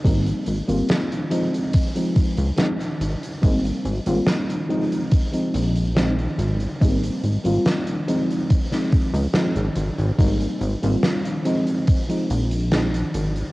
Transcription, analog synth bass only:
\new Staff \with { instrumentName = "Analog synth bass" } { \clef bass \time 4/4 \key aes \major \tempo 4 = 71 aes,,16 r16 aes,,16 aes,,16 r4. r16 des,16 r8 aes,,16 r16 | aes,,16 r16 aes,,16 aes,,16 r4. bes,,8. r16 aes,,16 r16 | aes,,16 r16 aes,,16 aes,,16 r4. r16 des,16 r16 aes,,16 aes,,16 aes,,16 | aes,,16 r16 aes,,16 aes,,16 r4. bes,,8. r16 aes,,16 r16 | }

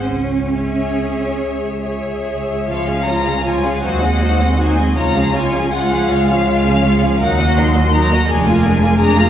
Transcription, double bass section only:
\new Staff \with { instrumentName = "Double bass section" } { \clef bass \time 6/8 \key cis \minor \tempo 4. = 53 cis,4. cis,4. | \key des \major des,4. ees,4. | des,4. des,4. | ees,4. f,,4. | }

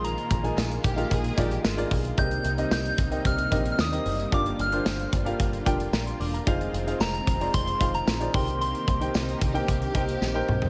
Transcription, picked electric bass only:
\new Staff \with { instrumentName = "Picked electric bass" } { \clef bass \time 4/4 \key c \minor \tempo 4 = 112 bes,,8 bes,,8 bes,,8 bes,,8 bes,,8 bes,,8 aes,,8 b,,8 | c,8 c,8 c,8 c,8 c,8 bes,,8 ees,8 fis,,8 | g,,8 g,,8 g,,8 g,,8 g,,8 f,,8 bes,,8 e,,8 | f,,8 f,,8 f,,8 f,,8 f,,8 f,,8 bes,,8 c,8~ |
c,8 c,8 c,8 c,8 c,8 c,8 bes,,8 b,,8 | }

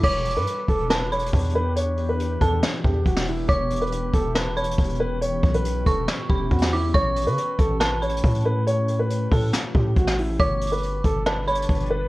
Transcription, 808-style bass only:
\new Staff \with { instrumentName = "808-style bass" } { \clef bass \time 4/4 \key e \dorian \tempo 4 = 139 e,,8. g,16 r8 e,,4. e,4~ | e,4. e,8 r8 e,8 e,,4 | e,,4. e,,4. e,,4~ | e,,8 b,,4 e,,8 r8 e,,8 e,4 |
a,,8. cis16 r8 a,,4. a,4~ | a,4. a,8 r8 a,8 a,,4 | g,,4. g,,4. g,,4 | }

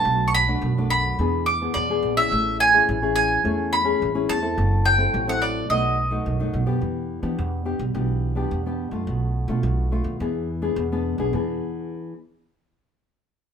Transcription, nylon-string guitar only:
\new Staff \with { instrumentName = "Nylon-string guitar" } { \time 4/4 \key b \phrygian \tempo 4 = 106 << { <fis a d'>8. <fis a d'>8 <fis a d'>8. <b d' gis'>8 r16 <b d' gis'>8 <b d' gis'>8 <cis' e' gis'>16~ | <cis' e' gis'>8. <cis' e' gis'>8 <cis' e' gis'>8. <cis' e' gis'>8. <cis' e' gis'>8 <cis' e' gis'>8 <c' e' a'>16~ | <c' e' a'>8. <c' e' a'>8 <c' e' a'>8. <fis a dis'>8 r16 <fis a dis'>8 <fis a dis'>8 <b d' g'>16~ | <b d' g'>8. <b d' g'>8. <b d' g'>16 r16 <b d' g'>8. <b d' g'>8 <b d' g'>8 <a d' f'>16~ |
<a d' f'>8. <a d' f'>8. <a d' f'>8 <b d' gis'>8 r16 <b d' gis'>8 <b d' gis'>8 <b d' gis'>16~ | <b d' gis'>8. r2. r16 | } \\ { b,4 fis,4 e4 b,4 | a4 e4 a4 e4 | fis4 fis4 b,4 fis,4 | e4 b,4 e4 b,4 |
b,4 b,4 e4 b,4 | <e b d' gis'>8 r2. r8 | } >> }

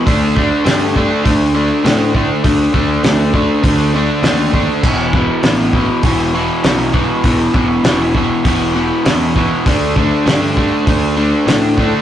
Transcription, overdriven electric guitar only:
\new Staff \with { instrumentName = "Overdriven electric guitar" } { \clef bass \time 4/4 \key d \mixolydian \tempo 4 = 100 <d a d'>8 <d a d'>8 <d a d'>8 <d a d'>8 <d a d'>8 <d a d'>8 <d a d'>8 <d a d'>8 | <d a d'>8 <d a d'>8 <d a d'>8 <d a d'>8 <d a d'>8 <d a d'>8 <d a d'>8 <d a d'>8 | <e, b, e>8 <e, b, e>8 <e, b, e>8 <e, b, e>8 <e, b, e>8 <e, b, e>8 <e, b, e>8 <e, b, e>8 | <e, b, e>8 <e, b, e>8 <e, b, e>8 <e, b, e>8 <e, b, e>8 <e, b, e>8 <e, b, e>8 <e, b, e>8 |
<d a d'>8 <d a d'>8 <d a d'>8 <d a d'>8 <d a d'>8 <d a d'>8 <d a d'>8 <d a d'>8 | }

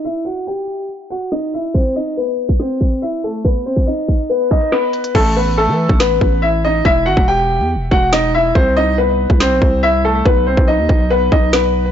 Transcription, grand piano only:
\new Staff \with { instrumentName = "Grand piano" } { \time 4/4 \key e \minor \tempo 4 = 141 <e' e''>8 <fis' fis''>8 <g' g''>4 r8 <fis' fis''>8 <dis' dis''>8 <e' e''>8 | <c' c''>8 <dis' dis''>8 <b b'>4 <c' c''>4 <e' e''>8 <a a'>8 | <b b'>8 <c' c''>8 <dis' dis''>4 <b b'>8 <dis' dis''>8 <b b'>4 | <a a'>8 <b b'>8 <a a'>4 <b b'>4 <e' e''>8 <dis' dis''>8 |
<e' e''>8 <fis' fis''>8 <g' g''>4 r8 <fis' fis''>8 <dis' dis''>8 <e' e''>8 | <c' c''>8 <dis' dis''>8 <b b'>4 <c' c''>4 <e' e''>8 <a a'>8 | <b b'>8 <c' c''>8 <dis' dis''>4 <b b'>8 <dis' dis''>8 <b b'>4 | }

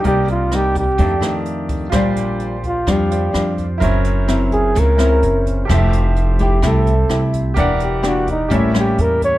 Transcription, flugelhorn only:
\new Staff \with { instrumentName = "Flugelhorn" } { \time 4/4 \key bes \major \tempo 4 = 128 g'8 f'8 g'8 g'4. r4 | r4. f'8 g'4. r8 | r4. aes'8 ais'4. r8 | r4. g'8 a'4. r8 |
r8 g'8 fis'8 ees'8 e'8 g'8 bes'8 cis''8 | }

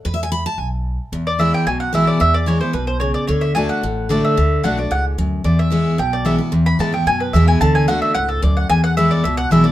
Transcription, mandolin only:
\new Staff \with { instrumentName = "Mandolin" } { \time 4/4 \key e \mixolydian \tempo 4 = 222 r1 | r8 d''8 e''8 g''8 gis''8 fis''8 e''8 d''8 | e''8 d''8 cis''8 c''8 b'8 c''8 cis''8 d''8 | cis''8 e''8 gis''8 fis''4. d''8 e''8~ |
e''4 fis''8 d''8 fis''8 r4. | d''8 e''4. g''8 d''8 e''8 r8 | r8 b''8 a''8 g''8 gis''8 b'8 e''8 gis''8 | a''8 gis''8 fis''8 e''8 fis''8 a'8 d''8 fis''8 |
gis''8 fis''8 e''8 d''8 e''8 fis''8 e''8 d''8 | }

